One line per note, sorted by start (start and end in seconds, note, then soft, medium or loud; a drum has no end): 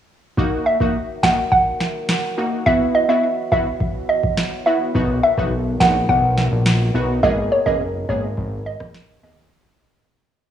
0.37 2.64 D#3 medium
0.37 7.19 F#3 medium
0.37 0.77 A#3 medium
0.37 2.64 A#3 medium
0.37 0.77 D#4 medium
0.37 4.91 F#4 medium
0.37 0.77 F#4 loud
0.37 kick loud
0.66 0.75 E5 medium
0.80 0.97 A#3 medium
0.80 0.97 D#4 medium
0.80 0.97 F#4 medium
0.80 kick medium
1.23 1.40 A#3 medium
1.23 1.40 D#4 medium
1.23 1.40 F#4 medium
1.23 1.41 F#5 medium
1.23 kick medium
1.23 snare loud
1.52 1.92 F#5 medium
1.52 kick loud
1.80 snare medium
2.09 snare loud
2.37 2.64 A#3 medium
2.37 2.64 D#4 medium
2.37 2.64 F#4 medium
2.66 4.92 E3 medium
2.66 3.05 B3 medium
2.66 7.19 B3 medium
2.66 3.06 E4 medium
2.66 3.06 F#4 loud
2.66 2.75 E5 loud
2.66 kick loud
2.95 3.04 D#5 medium
3.09 3.25 B3 medium
3.09 3.25 E4 medium
3.09 3.25 F#4 medium
3.09 3.18 E5 medium
3.52 3.68 B3 medium
3.52 3.68 E4 medium
3.52 3.68 F#4 medium
3.52 3.61 E5 medium
3.52 kick medium
3.80 kick loud
4.09 4.18 D#5 medium
4.23 kick medium
4.37 snare loud
4.66 4.92 B3 medium
4.66 4.92 E4 medium
4.66 4.93 F#4 medium
4.66 4.75 E5 medium
4.94 5.21 B1 loud
4.94 7.21 D#3 medium
4.94 5.34 B3 medium
4.94 5.34 D#4 medium
4.94 7.21 F#4 medium
4.94 5.34 F#4 loud
4.94 kick loud
5.23 5.32 E5 medium
5.37 5.77 B1 medium
5.37 5.54 B3 medium
5.37 5.54 D#4 medium
5.37 5.54 F#4 medium
5.37 kick medium
5.80 6.06 A#1 loud
5.80 5.97 B3 medium
5.80 5.97 D#4 medium
5.80 5.97 F#4 medium
5.80 5.98 F#5 medium
5.80 kick medium
5.80 snare loud
6.09 6.48 B1 loud
6.09 6.49 F#5 medium
6.09 kick medium
6.38 snare medium
6.52 6.91 A#1 medium
6.66 snare loud
6.94 7.21 B1 medium
6.94 7.21 B3 medium
6.94 7.21 D#4 medium
6.94 7.21 F#4 medium
7.23 7.49 G#1 loud
7.23 9.50 B2 medium
7.23 9.50 G#3 medium
7.23 7.63 A#3 medium
7.23 7.63 B3 medium
7.23 9.50 D#4 medium
7.23 7.63 G#4 loud
7.23 9.50 A#4 medium
7.23 7.32 D#5 loud
7.23 kick loud
7.52 7.61 C#5 medium
7.66 8.05 F#1 medium
7.66 7.82 A#3 medium
7.66 7.83 B3 medium
7.66 7.83 G#4 medium
7.66 7.75 D#5 medium
7.66 kick medium
8.09 8.35 G#1 loud
8.09 8.25 A#3 medium
8.09 8.25 B3 medium
8.09 8.26 G#4 medium
8.09 8.18 C#5 medium
8.09 kick medium
8.38 8.77 G#1 loud
8.38 kick loud
8.66 8.75 D#5 medium
8.80 8.94 A#1 medium
8.80 kick medium
8.80 cross-stick loud
8.94 snare loud
9.23 9.49 D#2 medium
9.23 9.49 A#3 medium
9.23 9.50 B3 medium
9.23 9.50 G#4 medium
9.23 9.32 D#5 medium